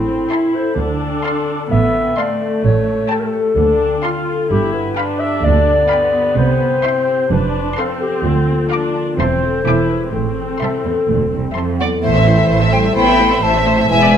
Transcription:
Already playing: double bass section A1, cello section A2, harp A2 E4, viola section C4, clarinet E4
0.08 harp C4
0.30 harp E4, viola section E4, violin section E5 A5 C6
0.54 harp A4, clarinet C5
0.77 double bass section D2, harp D3, cello section D3, viola section D4, clarinet A4
1.01 harp C4
1.24 harp F4, violin section F5 A5 C6
1.47 harp A4
1.70 double bass section A1, cello section A2, harp A3, viola section B3, clarinet E5
1.94 harp C4
2.17 viola section A3, harp F4, clarinet D5, violin section F5 A5 C6
2.40 harp A4
2.64 double bass section A1, harp A2, cello section A2, clarinet C#5
2.87 harp A3
3.10 harp G4, clarinet A4, violin section G5 A5
3.20 clarinet A#4
3.26 clarinet A4
3.33 harp A4
3.57 double bass section D2, cello section D2, harp D3, viola section D4
3.80 harp C4
4.03 viola section F4, harp F4, violin section F5 A5 C6
4.27 harp A4
4.50 double bass section G1, harp G2, cello section G2, viola section E4, clarinet G4
4.73 harp B3, clarinet B4
4.96 viola section D4, harp F4, violin section F5 G5 B5
5.20 harp G4, clarinet E5
5.43 double bass section D2, cello section D2, harp D3, clarinet D5
5.66 harp B3
5.89 viola section B3, harp F4, violin section F5 G5 B5
6.13 harp G4
6.36 double bass section C2, harp C3, cello section C3, clarinet C5
6.60 harp C4
6.83 viola section C4, harp E4, violin section E5 G5 C6
7.07 harp G4
7.30 double bass section F1, cello section F2, harp F3, viola section D4, clarinet B4
7.54 harp F4
7.77 viola section C4, harp A4, clarinet A4, violin section F5 A5 C6
8.01 clarinet G4, harp C5
8.24 double bass section D2, cello section D2, harp D3, clarinet F4
8.48 harp A#3
8.71 viola section D4, harp F4, violin section F5 A#5 D6
8.95 harp A#4
9.18 double bass section E1, cello section E2, harp E3, viola section C4, clarinet C5, violin section E5 A5 C6
9.41 harp E4 A4
9.65 double bass section E1, cello section E2, harp E3, viola section E4, violin section E5 G#5 D6
9.89 harp E4 G#4, clarinet B4
10.13 double bass section A1, harp A2, cello section A2, viola section C4, clarinet A4
10.37 harp C4
10.60 cello section C2, harp E4, violin section E5 A5 C6
10.84 cello section E2, harp A4
11.08 double bass section E1, cello section D2, harp E3
11.32 cello section C2, harp C4
11.55 cello section F2, harp E4, violin section E5 A5 C6
11.79 cello section E2 F#3, harp A4, violin section D5, flute F#5
12.02 double bass section A1, harp A2, cello section E3, viola section A3 E4, french horn section A4, violin section C5, flute E5
12.14 viola section C4 A4, harp C4, violin section E5
12.26 viola section A3 E4, harp E4, violin section C5
12.37 viola section C4 A4, harp C5, violin section E5
12.49 double bass section A1, viola section A3 E4, violin section C5, harp A5
12.61 viola section C4 A4, harp E5, violin section E5
12.72 cello section G3, viola section A3 E4, violin section C5 E5, harp C5, flute G5
12.84 viola section C4 A4, harp E4, violin section E5
12.95 double bass section A1, harp E3, viola section A3 E4, cello section B3, violin section C5 G5, flute B5
13.07 viola section C4 A4, violin section E5
13.19 viola section A3 E4, harp E4, violin section C5
13.31 viola section C4 A4, harp C5, violin section E5
13.42 double bass section A1, viola section A3 E4, cello section A3, violin section C5 E5, french horn section C5, flute A5, harp A5
13.54 viola section C4 A4, violin section E5, harp E5
13.66 viola section A3 E4, violin section C5, harp C5
13.78 viola section C4 A4, harp E4, violin section E5
13.89 double bass section E1, harp E2, viola section G#3 E4, cello section G#3, french horn section B4, violin section E5, flute G#5
14.01 viola section B3 D4, violin section D5
14.13 viola section G#3 E4, harp E4

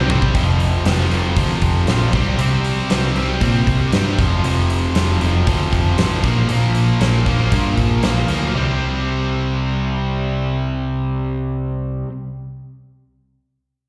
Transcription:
0.09 picked electric bass C3, distorted electric guitar C3 G3 C4, floor tom
0.22 kick
0.34 picked electric bass F1, distorted electric guitar F2 C3 F3, kick, open hi-hat
0.60 open hi-hat
0.85 picked electric bass F1, distorted electric guitar F2 C3 F3, snare, open hi-hat
1.11 picked electric bass F1, distorted electric guitar F2 C3 F3, open hi-hat
1.36 picked electric bass D2, distorted electric guitar F2 C3 F3, kick, open hi-hat
1.62 picked electric bass F1, kick, open hi-hat
1.87 picked electric bass A#1, distorted electric guitar F2 C3 F3, snare, open hi-hat
2.13 picked electric bass C2, distorted electric guitar C3 G3 C4, kick, open hi-hat
2.38 picked electric bass C2, distorted electric guitar C3 G3 C4, open hi-hat
2.65 open hi-hat
2.90 picked electric bass C2, distorted electric guitar C3 G3 C4, snare, open hi-hat
3.15 picked electric bass C2, distorted electric guitar C3 G3 C4, open hi-hat
3.41 picked electric bass A#2, distorted electric guitar C3 G3 C4, kick, open hi-hat
3.67 picked electric bass C2, kick, open hi-hat
3.92 picked electric bass G2, distorted electric guitar C3 G3 C4, snare, open hi-hat
4.19 picked electric bass F1, distorted electric guitar F2 C3 F3, kick, open hi-hat
4.44 picked electric bass F1, distorted electric guitar F2 C3 F3, open hi-hat
4.70 open hi-hat
4.95 picked electric bass F1, distorted electric guitar F2 C3 F3, snare, open hi-hat
5.21 picked electric bass F1, distorted electric guitar F2 C3 F3, open hi-hat
5.46 picked electric bass D2, distorted electric guitar F2 C3 F3, kick, open hi-hat
5.73 picked electric bass F1, kick, open hi-hat
5.98 picked electric bass A1, distorted electric guitar F2 C3 F3, snare, open hi-hat
6.23 picked electric bass A#1, distorted electric guitar A#2 F3 A#3, kick, open hi-hat
6.48 picked electric bass A#1, distorted electric guitar A#2 F3 A#3, open hi-hat
6.75 open hi-hat
7.00 picked electric bass A#1, distorted electric guitar A#2 F3 A#3, snare, open hi-hat
7.26 picked electric bass A#1, distorted electric guitar A#2 F3 A#3, kick, open hi-hat
7.52 picked electric bass G2, distorted electric guitar A#2 F3 A#3, kick, open hi-hat
7.77 picked electric bass A#1, kick, open hi-hat
8.03 picked electric bass A#1, distorted electric guitar A#2 F3 A#3, snare, open hi-hat
8.27 picked electric bass D2, distorted electric guitar A#2 F3 A#3, open hi-hat
8.53 picked electric bass C2, distorted electric guitar C3 G3
8.58 distorted electric guitar C4

